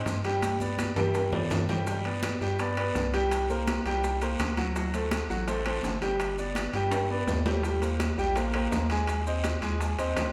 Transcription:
Already playing: C4 C5 D#5
0.06 G2, high bongo, low bongo, high conga, short guiro, maracas
0.24 G3 G4 G5, high bongo, high timbale, short guiro, maracas
0.42 high bongo, high conga, high timbale, long guiro, maracas
0.60 B3 B4 D5, high bongo, high conga, maracas
0.78 high bongo, high conga, high timbale, short guiro, maracas
0.96 G2 G3 G4 G5, low conga, high timbale, short guiro, maracas
1.15 high bongo, high timbale, long guiro, maracas
1.32 F2 B3 B4 D5, high bongo, low conga, low timbale
1.50 G2, high bongo, low bongo, low conga, low timbale, short guiro, maracas
1.69 G3 G4 G5, high bongo, low conga, low timbale, short guiro, maracas
1.87 G3 G4 G5, high bongo, high conga, long guiro, maracas
2.05 B3 B4 D5, high conga, high timbale
2.23 high bongo, high conga, high timbale, short guiro, maracas
2.41 G2 G3 G4 G5, high bongo, high conga, short guiro, maracas
2.59 B3 B4 D5, high bongo, high conga, high timbale, long guiro, maracas
2.77 B3 B4 D5, high bongo, high conga, high timbale
2.95 C2, high bongo, low bongo, high conga, short guiro, maracas
3.14 G3 G4 G5, high bongo, high timbale, short guiro, maracas
3.31 high bongo, high conga, high timbale, long guiro, maracas
3.49 A#3 A#4 C5, high bongo, high conga, maracas
3.67 high bongo, high conga, high timbale, short guiro, maracas
3.85 C2 G3 G4 G5, high conga, high timbale, short guiro, maracas
4.04 high bongo, high conga, long guiro, maracas
4.21 A#3 A#4 C5, high bongo, high conga, high timbale, maracas
4.39 D2, high bongo, low bongo, high conga, high timbale, short guiro, maracas
4.57 F#3 F#4 F#5, high bongo, high conga, high timbale, short guiro, maracas
4.76 F#3 F#4 F#5, high bongo, high conga, long guiro, maracas
4.94 A3 A4 C5, high conga, high timbale, maracas
5.11 high bongo, high conga, high timbale, short guiro, maracas
5.29 A1 F#3 F#4 F#5, high bongo, high conga, short guiro, maracas
5.47 A3 A4 C5, high bongo, high conga, high timbale, long guiro, maracas
5.66 A3 A4 C5, high bongo, high conga, high timbale
5.83 G1, high bongo, low bongo, high conga, short guiro, maracas
6.02 G3 G4 G5, high bongo, high timbale, short guiro, maracas
6.20 high bongo, high conga, high timbale, long guiro, maracas
6.38 B3 B4 D5, high bongo, high conga, maracas
6.55 high bongo, high conga, high timbale, short guiro, maracas
6.73 G2 G3 G4 G5, high conga, high timbale, short guiro, maracas
6.91 high bongo, high timbale, long guiro, maracas
7.10 B3 B4 D5, high bongo, high conga
7.27 D#2, high bongo, low bongo, high conga, low timbale, short guiro, maracas
7.45 G3 G4 G5, high bongo, high conga, low timbale, short guiro, maracas
7.63 G3 G4 G5, high bongo, high conga, long guiro, maracas
7.82 A#3 A#4 C5, high conga, high timbale, maracas
8.00 high bongo, high conga, high timbale, short guiro, maracas
8.18 A#1 G3 G4 G5, high bongo, high conga, short guiro, maracas
8.36 A#3 A#4 C5, high bongo, high conga, high timbale, long guiro, maracas
8.54 A#3 A#4 C5, high bongo, high conga, high timbale
8.71 D#2, high bongo, low bongo, high conga, low timbale, short guiro, maracas
8.90 G#3 G#4 G#5, high bongo, high timbale, short guiro, maracas
9.07 high bongo, high conga, high timbale, long guiro, maracas
9.26 C4 C5 D#5, high bongo, high conga, maracas
9.44 high bongo, high conga, high timbale, short guiro, maracas
9.62 D#2 G#3 G#4 G#5, high conga, high timbale, short guiro, maracas
9.80 high bongo, high conga, long guiro, maracas
9.98 D#2 C4 C5 D#5, high bongo, high conga, high timbale, maracas
10.16 D2, high bongo, low bongo, high conga, high timbale, low timbale, short guiro, maracas

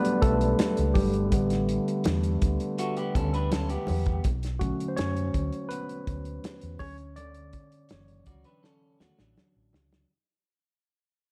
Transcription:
Already playing: D3 F#3 G3 A3 B3 D4 F#4 G4 B4 D5
0.05 closed hi-hat
0.22 B1 A3 A4, kick, closed hi-hat, muted conga
0.41 closed hi-hat
0.59 snare, closed hi-hat, high conga
0.77 C#2, closed hi-hat
0.94 G1 G3 G4, kick, open hi-hat, high conga
1.14 closed hi-hat
1.32 A1 D3 G3 A3 B3, kick, closed hi-hat, muted conga
1.50 snare, closed hi-hat
1.69 closed hi-hat
1.88 closed hi-hat
2.04 E2, snare, closed hi-hat, high conga
2.23 closed hi-hat
2.42 D2, kick, closed hi-hat
2.60 closed hi-hat
2.78 A3 F#4, closed hi-hat
2.97 B3 G4, closed hi-hat
3.15 D2 C#4 A4, kick, closed hi-hat, muted conga, low conga
3.34 D4 B4, closed hi-hat
3.52 C#4 A4, snare, closed hi-hat, high conga
3.69 B3 G4, closed hi-hat
3.87 E2, open hi-hat, high conga
4.06 kick, closed hi-hat
4.24 B1, kick, closed hi-hat, muted conga
4.43 snare, closed hi-hat
4.59 D3 F#3 A3 C#4 F#4, kick, closed hi-hat
4.80 closed hi-hat
4.88 C5
4.96 F#2 C#4 C#5, snare, closed hi-hat, high conga
5.17 closed hi-hat
5.34 D2, kick, closed hi-hat
5.52 closed hi-hat
5.69 B3 B4, closed hi-hat
5.89 closed hi-hat
6.07 D2, kick, closed hi-hat, muted conga
6.25 closed hi-hat
6.44 snare, closed hi-hat, high conga
6.61 E2, closed hi-hat
6.79 D2 C#4 C#5, kick, open hi-hat, high conga
6.98 closed hi-hat
7.16 D3 D5, closed hi-hat, muted conga
7.34 closed hi-hat
7.53 kick, closed hi-hat
7.72 closed hi-hat
7.89 F#1 E3 F#3 C#5, snare, closed hi-hat, high conga
8.08 closed hi-hat
8.26 C#2 F#4 D5, kick, closed hi-hat
8.44 D4 B4, closed hi-hat
8.63 C#4 A4, snare
9.00 A3 F#4, muted fingered electric bass stroke, snare, muted conga, low conga
9.19 A1 F#3 D4, snare
9.37 snare, high conga
9.56 A1
9.73 C#2, snare, high conga
9.93 snare

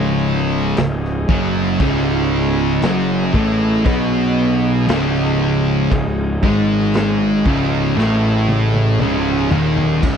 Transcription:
Already playing: C#1 C#2 C#3 C#4 G#4 D#5
0.77 C#1 C#2, snare, crash
1.05 snare
1.29 F#1 F#2 F#3, kick
1.79 C#1 C#2 C#3, kick, crash
2.81 F#1 F#2 F#3, snare, crash
3.33 A1 A2 A3, kick
3.85 B1 B2 B3, kick, crash
4.88 C#1 C#2 C#3, snare, crash
5.16 snare
5.91 C#1 C#2, kick, crash
6.43 G#1 G#2 G#3, kick
6.94 snare, crash
7.46 C#1 C#2 C#3, kick
7.97 A1 A2 A3, snare
8.48 high tom
8.74 high tom
8.99 C#1 C#2 C#3, mid tom
9.51 D#1 D#2 D#3, floor tom
9.77 floor tom
10.02 C#1 C#2 C#3 C#4 G#4 E5, kick, crash

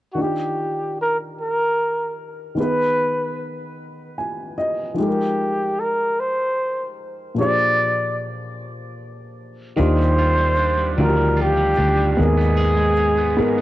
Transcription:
0.13 D#3 D4 F#4
0.20 F4 G4
1.01 A#4
1.41 A#4
2.55 D#3 B3
2.60 G#4 B4
4.18 G#5
4.58 D#5
4.94 F3 D#4 G4
5.00 G#3 G4 A4
5.08 A#4
5.80 A#4
6.20 C5
7.35 A#2 F3 D4
7.39 G4 G#4 C5 D5
9.76 D#2 D#3 D4 F4 G4
9.81 C5
9.97 G3
10.18 F4
10.38 G3
10.57 D4
10.77 G3
10.97 D2 D#3 F3 D4 F4 F#4
11.01 A#4
11.07 G4
11.17 G3
11.37 F4
11.42 G4
11.57 G3
11.77 D2 D4
11.97 G3
12.13 G4
12.17 D#2 G#2 B3 G#4 A#4
12.22 G#4
12.37 B3
12.57 G#4
12.77 G#3
12.97 D#4
13.17 B3
13.37 G#2 B3 G#4 A#4, muted picked electric bass stroke
13.58 B3

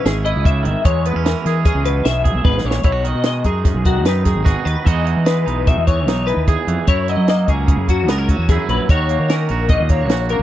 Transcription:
Already playing: G#2 E3 C#4 E4
0.05 G#1 G#4, snare, closed hi-hat
0.25 E4 D#5, closed hi-hat
0.36 C#2
0.44 C#3 E5, kick, closed hi-hat
0.63 G#1 D#3, closed hi-hat
0.84 E2 G#3 C#5, kick, closed hi-hat
1.05 B3 B4, closed hi-hat
1.15 E2 C#4
1.25 E3 A#4, snare, closed hi-hat
1.45 E3 G#4, snare, closed hi-hat
1.65 C#4 G#4, kick, closed hi-hat
1.75 C#2
1.85 B2 B4, closed hi-hat
2.05 B1 E5, snare, closed hi-hat
2.24 G#4, kick, closed hi-hat
2.35 B1
2.44 G#1 G#2 B4, kick, high tom
2.58 snare
2.64 A#1 A#2 C#5
2.71 snare
2.83 B1 B2 E4 C#5, kick, closed hi-hat
2.92 F#4
3.04 D#3 D#5, closed hi-hat
3.15 B2
3.23 G#3 D#5, snare, closed hi-hat
3.44 F#2 D#4 G#4, kick, closed hi-hat
3.64 F#2, kick, snare, closed hi-hat
3.74 B1
3.85 D#3 F#4, kick, closed hi-hat
4.05 F#2 D#4 B4, snare, closed hi-hat
4.25 D#3 G#4, kick, snare, closed hi-hat
4.35 G#1
4.44 B2 F#4 G#4, kick, snare, closed hi-hat
4.65 D#2 D#3 B4, closed hi-hat
4.84 E2 E3 G#3 D#4 F#4 D#5, kick, closed hi-hat
5.04 E3, closed hi-hat
5.16 E3
5.26 G#3 B4, snare, closed hi-hat
5.46 B1 D#4, closed hi-hat
5.67 B2 E5, kick, closed hi-hat
5.78 E2
5.87 E3 C#5, kick, closed hi-hat
6.07 B1 D#4, snare, closed hi-hat
6.27 E3 B4, closed hi-hat
6.37 D#2
6.47 E2 G#4, kick, closed hi-hat
6.67 F2 E3, closed hi-hat
6.87 F#2 E4 C#5, kick, closed hi-hat
7.08 F#3 D#5, closed hi-hat
7.17 F#3
7.28 A#3 D#5, snare, closed hi-hat
7.48 C#2 C#4 G#4, kick, closed hi-hat
7.68 C#3, kick, closed hi-hat
7.77 F#2
7.88 F#3 F#4, kick, closed hi-hat
8.07 C#2 B3 A#4, snare, closed hi-hat
8.18 C#4
8.29 F#3 F#4, kick, closed hi-hat
8.38 E2
8.49 F#2 E4 G#4, kick, snare, closed hi-hat
8.68 A#1 F#3 B4, closed hi-hat
8.89 D#2 D#3 F#4 C#5, kick, closed hi-hat
9.09 A#3, closed hi-hat
9.19 D#3
9.29 C#4 A#4, snare, closed hi-hat
9.49 A#1 F#4, closed hi-hat
9.69 A#2 D#5, kick, closed hi-hat
9.80 D#2
9.89 A#3 C#5, kick, closed hi-hat
10.09 A#1 F#4, snare, closed hi-hat
10.29 A#3 A#4, closed hi-hat
10.39 C#2

